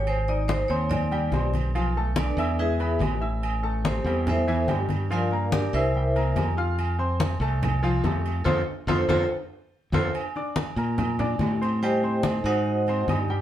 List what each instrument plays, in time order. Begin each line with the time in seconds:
Already playing: fingered electric bass G#1, grand piano G4 G5 G6
0.07 vibraphone C5, high conga, low agogo
0.28 grand piano D#4 D#5 D#6, vibraphone D5, high conga
0.48 vibraphone C5, high conga, low timbale, low agogo
0.68 fingered electric bass D#2, grand piano C4 C5 C6, vibraphone C#5, high conga, low agogo
0.90 vibraphone D5, high conga, low conga, low agogo
1.11 grand piano G3 G4 G5, high conga, low agogo
1.31 fingered electric bass B1, grand piano C4 C5 C6, high conga, low timbale, low agogo
1.54 high conga, low agogo
1.74 grand piano F3 F4 F5, high conga, low agogo
1.95 grand piano A3 A4 A5, high conga
2.16 vibraphone D4 A4 B4 D5, high conga, low timbale, low agogo
2.37 fingered electric bass E2, grand piano E4 E5 E6, high conga, low agogo
2.59 grand piano G#3 G#4 G#5, vibraphone E4 G#4 B4 E5, high conga
2.79 grand piano B3 B4 B5, high conga, low agogo
2.99 fingered electric bass A1, high conga, low timbale, low agogo
3.21 grand piano E4 E5 E6, high conga
3.43 high conga, low agogo
3.63 grand piano A3 A4 A5, high conga
3.85 vibraphone C4 G4 A4 C5, high conga, low timbale, low agogo
4.04 fingered electric bass E2, grand piano G3 G4 G5, high conga, low agogo
4.27 vibraphone E4 A4 C5 E5, high conga, low conga, low agogo
4.48 grand piano E3 E4 E5, high conga, low agogo
4.68 fingered electric bass G2, grand piano G3 G4 G5, high conga, low timbale, low agogo
4.89 high conga, low agogo
5.10 grand piano F3 F4 F5, vibraphone F4 A#4 D5 F5, high conga, low agogo
5.31 grand piano A#3 A#4 A#5, high conga
5.52 vibraphone D4 G4 A#4 D5, high conga, low timbale, low agogo
5.73 fingered electric bass C2, vibraphone E4 A#4 C5 E5, grand piano E4 E5 E6, high conga, low agogo
5.95 grand piano G3 G4 G5, high conga
6.16 grand piano A#3 A#4 A#5, high conga, low agogo
6.36 fingered electric bass F2, high conga, low timbale, low agogo
6.57 grand piano F4 F5 F6, high conga
6.78 high conga, low agogo
6.99 grand piano C4 C5 C6, high conga
7.20 high conga, low timbale, low agogo
7.40 fingered electric bass C2, grand piano A3 A4 A5, high conga, low agogo
7.63 high conga, low conga, low agogo
7.83 grand piano F3 F4 F5, high conga, low agogo
8.03 fingered electric bass F2, grand piano A3 A4 A5, high conga, low timbale, low agogo
8.26 low agogo
8.44 fingered electric bass F2, vibraphone F4 A4 C5, grand piano F4 A4 C5, high conga, high timbale
8.87 fingered electric bass F2, grand piano F4 A4 C5, vibraphone F4 A4 C5, high conga, high timbale
9.08 fingered electric bass F2, grand piano F4 A4 C5, vibraphone F4 A4 C5, high conga, high timbale
9.92 fingered electric bass F2, grand piano F4 A4 C5, vibraphone F4 A4 C5, high conga, high timbale
10.14 high conga, low agogo
10.36 grand piano D4 D5 D6, high conga
10.56 high conga, low timbale, low agogo
10.76 fingered electric bass A#2, grand piano A#3 A#4 A#5, high conga, low agogo
10.98 high conga, low conga, low agogo
11.19 grand piano D4 D5 D6, high conga, low conga, low agogo
11.39 fingered electric bass A2, high conga, low timbale, low agogo
11.61 grand piano C4 C5 C6, low agogo
11.82 grand piano G3 G4 G5, vibraphone G4 C5 D#5 G5, high conga, low agogo
12.03 grand piano C4 C5 C6, high conga
12.23 vibraphone D#4 A4 C5 D#5, high conga, low timbale, low agogo
12.44 fingered electric bass G#2, grand piano D#4 D#5 D#6, vibraphone F#4 C5 D#5 F#5, high conga, low agogo
12.66 high conga
12.87 grand piano C4 C5 C6, high conga, low agogo
13.08 fingered electric bass G2, grand piano D#4 D#5 D#6, high conga, low timbale, low agogo
13.28 grand piano G3 G4 G5, high conga